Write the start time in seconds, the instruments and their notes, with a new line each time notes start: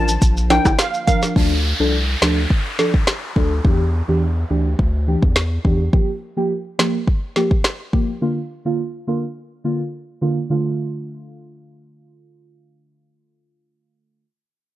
Already playing: sub bass A1, analog synth pad D3 F3 A#3 F4, synth stab F3 D4 A#4
0.08 maracas
0.22 sub bass A#1, kick, closed hi-hat, maracas
0.37 maracas
0.50 synth stab F3 D4 A#4, synth pluck G5, snare, closed hi-hat, high timbale
0.65 sub bass G1, kick, cross-stick, high timbale, maracas
0.79 synth pluck F5, finger snap, snare, closed hi-hat, maracas
0.94 maracas
1.07 synth stab F3 D4 A#4, synth pluck F5, kick, closed hi-hat, maracas
1.23 snare, maracas
1.36 sub bass D2, synth stab F3 D4 A4, kick, downlifter
1.80 sub bass C2, synth stab F3 D4 A4
2.21 sub bass D2, synth stab F3 D4 A4, finger snap, snare
2.50 kick
2.79 synth stab F3 D4 A4, snare
2.94 kick
3.07 finger snap, snare
3.36 sub bass D2, synth stab F3 D4 A4, kick
3.64 sub bass E2, synth stab E3 D4 G4, kick
4.08 sub bass E2, synth stab E3 D4 G4
4.50 sub bass D2, synth stab E3 D4 G4
4.79 sub bass D2, kick
5.07 synth stab E3 D4 G4
5.22 sub bass E2, kick
5.36 finger snap, snare
5.65 sub bass E2, synth stab E3 D4 G4, kick
5.93 synth stab F3 A#3 G4, kick
6.37 synth stab F3 A#3 G4
6.79 synth stab F3 A#3 G4, finger snap, snare
7.07 kick
7.36 synth stab F3 A#3 G4, snare
7.51 kick
7.64 finger snap, snare
7.93 synth stab F3 A#3 G4, kick
8.21 synth stab D3 A#3 F4
8.65 synth stab D3 A#3 F4
9.07 synth stab D3 A#3 F4
9.64 synth stab D3 A#3 F4
10.21 synth stab D3 A#3 F4
10.50 synth stab D3 A3 F4